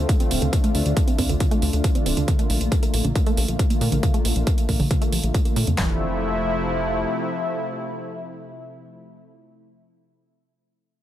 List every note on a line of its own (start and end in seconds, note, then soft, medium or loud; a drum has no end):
0.00 0.13 D3 medium
0.00 0.13 A3 medium
0.00 0.13 C4 medium
0.00 0.13 F4 medium
0.09 kick loud
0.09 closed hi-hat medium
0.20 0.27 D3 medium
0.20 0.27 A3 medium
0.20 0.27 C4 medium
0.20 0.23 C4 medium
0.20 0.27 F4 medium
0.20 closed hi-hat soft
0.31 0.39 D1 medium
0.31 0.46 D3 medium
0.31 0.46 A3 medium
0.31 0.46 C4 medium
0.31 0.37 C4 medium
0.31 0.46 F4 medium
0.31 open hi-hat loud
0.42 0.50 D2 medium
0.42 0.46 D3 medium
0.42 closed hi-hat soft
0.52 0.68 D3 medium
0.52 0.55 D3 medium
0.52 0.68 A3 medium
0.52 0.68 D4 medium
0.52 0.68 F4 medium
0.52 kick loud
0.52 closed hi-hat medium
0.64 0.68 A3 medium
0.64 closed hi-hat soft
0.74 0.83 D2 medium
0.74 0.82 D3 medium
0.74 0.82 A3 medium
0.74 0.82 D4 medium
0.74 0.82 F4 medium
0.74 open hi-hat medium
0.85 0.94 D2 medium
0.85 1.01 D3 medium
0.85 1.01 A3 medium
0.85 1.01 D4 medium
0.85 1.01 F4 medium
0.85 closed hi-hat soft
0.97 kick loud
0.97 closed hi-hat medium
1.08 1.10 C4 medium
1.08 closed hi-hat soft
1.18 1.26 D2 medium
1.18 1.34 D3 medium
1.18 1.34 A3 medium
1.18 1.25 C4 medium
1.18 1.34 D4 medium
1.18 1.34 F4 medium
1.18 kick medium
1.18 open hi-hat medium
1.29 1.37 D2 medium
1.29 1.34 D3 medium
1.29 closed hi-hat soft
1.40 1.56 D3 medium
1.40 1.43 D3 medium
1.40 1.56 A3 medium
1.40 1.56 D4 medium
1.40 1.56 F4 medium
1.40 kick loud
1.40 closed hi-hat medium
1.51 1.56 A3 loud
1.51 closed hi-hat medium
1.62 1.70 D2 medium
1.62 open hi-hat medium
1.73 1.81 D2 medium
1.73 1.89 D3 medium
1.73 1.88 A3 medium
1.73 1.88 D4 medium
1.73 1.88 F4 medium
1.73 closed hi-hat soft
1.84 kick loud
1.84 closed hi-hat medium
1.95 2.03 D3 medium
1.95 2.03 A3 medium
1.95 1.98 C4 medium
1.95 2.03 D4 medium
1.95 2.03 F4 medium
1.95 closed hi-hat soft
2.06 2.14 D1 medium
2.06 2.21 D3 medium
2.06 2.22 A3 medium
2.06 2.12 C4 medium
2.06 2.22 D4 medium
2.06 2.22 F4 medium
2.06 open hi-hat medium
2.17 2.25 D2 medium
2.17 2.21 D3 medium
2.17 closed hi-hat soft
2.28 2.30 D3 medium
2.28 2.43 D3 medium
2.28 2.43 A3 medium
2.28 2.43 A#3 medium
2.28 2.43 F4 medium
2.28 kick loud
2.28 closed hi-hat medium
2.39 2.43 A3 medium
2.39 closed hi-hat soft
2.50 2.58 A#1 medium
2.50 2.57 D3 medium
2.50 2.58 A3 medium
2.50 2.58 A#3 medium
2.50 2.58 F4 medium
2.50 open hi-hat medium
2.61 2.69 A#1 medium
2.61 2.76 D3 medium
2.61 2.76 A3 medium
2.61 2.76 A#3 medium
2.61 2.76 F4 medium
2.61 closed hi-hat medium
2.72 kick loud
2.72 closed hi-hat medium
2.83 2.85 A#3 medium
2.83 closed hi-hat medium
2.94 3.02 A#1 medium
2.94 3.09 D3 medium
2.94 3.09 A3 medium
2.94 3.00 A#3 medium
2.94 3.09 A#3 medium
2.94 3.09 F4 medium
2.94 open hi-hat medium
3.04 3.12 A#1 medium
3.04 3.09 D3 medium
3.04 closed hi-hat medium
3.15 3.18 D3 medium
3.15 3.31 D3 medium
3.15 3.31 A3 medium
3.15 3.31 A#3 medium
3.15 3.31 F4 medium
3.15 kick loud
3.15 closed hi-hat medium
3.26 3.31 A3 loud
3.26 closed hi-hat medium
3.37 3.45 A#1 medium
3.37 open hi-hat medium
3.48 3.56 A#1 medium
3.48 3.64 D3 medium
3.48 3.64 A3 medium
3.48 3.64 A#3 medium
3.48 3.64 F4 medium
3.48 closed hi-hat soft
3.59 kick loud
3.59 closed hi-hat medium
3.70 3.78 D3 medium
3.70 3.78 A3 medium
3.70 3.73 A#3 medium
3.70 3.78 A#3 medium
3.70 3.78 F4 medium
3.70 closed hi-hat soft
3.81 3.89 A#2 medium
3.81 3.96 D3 medium
3.81 3.96 A3 medium
3.81 3.96 A#3 medium
3.81 3.87 A#3 medium
3.81 3.97 F4 medium
3.81 open hi-hat medium
3.92 4.00 A#1 medium
3.92 3.96 D3 medium
3.92 closed hi-hat soft
4.03 4.18 D3 medium
4.03 4.06 D3 medium
4.03 4.18 A3 medium
4.03 4.18 A#3 medium
4.03 4.18 F4 medium
4.03 kick loud
4.03 closed hi-hat medium
4.14 4.18 A3 medium
4.14 closed hi-hat soft
4.25 4.33 A#1 medium
4.25 4.33 D3 medium
4.25 4.33 A3 medium
4.25 4.33 A#3 medium
4.25 4.33 F4 medium
4.25 open hi-hat medium
4.36 4.44 A#1 medium
4.36 4.51 D3 medium
4.36 4.51 A3 medium
4.36 4.51 A#3 medium
4.36 4.51 F4 medium
4.36 closed hi-hat soft
4.47 kick loud
4.47 closed hi-hat medium
4.58 4.60 A#3 medium
4.58 closed hi-hat soft
4.69 4.77 A#1 medium
4.69 4.84 D3 medium
4.69 4.84 A3 medium
4.69 4.84 A#3 medium
4.69 4.75 A#3 medium
4.69 4.84 F4 medium
4.69 kick medium
4.69 open hi-hat medium
4.80 4.88 A#1 medium
4.80 4.84 D3 medium
4.80 open hi-hat medium
4.91 4.93 D3 medium
4.91 5.06 D3 medium
4.91 5.06 A3 medium
4.91 5.06 A#3 medium
4.91 5.06 F4 medium
4.91 kick loud
4.91 closed hi-hat medium
5.02 5.06 A3 loud
5.02 closed hi-hat medium
5.12 5.20 A#1 medium
5.12 open hi-hat medium
5.23 5.31 A#1 medium
5.23 5.39 D3 medium
5.23 5.39 A3 medium
5.23 5.39 A#3 medium
5.23 5.39 F4 medium
5.23 closed hi-hat medium
5.34 kick loud
5.34 closed hi-hat medium
5.45 5.53 D3 medium
5.45 5.53 A3 medium
5.45 5.48 A#3 medium
5.45 5.53 A#3 medium
5.45 5.53 F4 medium
5.45 closed hi-hat soft
5.56 5.64 A#2 medium
5.56 5.72 D3 medium
5.56 5.72 A3 medium
5.56 5.72 A#3 medium
5.56 5.63 A#3 medium
5.56 5.72 F4 medium
5.56 open hi-hat medium
5.67 5.75 F2 medium
5.67 5.72 D3 medium
5.67 closed hi-hat soft
5.78 7.06 F1 medium
5.78 9.17 C3 medium
5.78 5.99 E3 medium
5.78 9.17 F3 medium
5.78 9.17 A3 medium
5.78 9.17 E4 medium
5.78 kick medium
5.78 snare medium
5.78 clap medium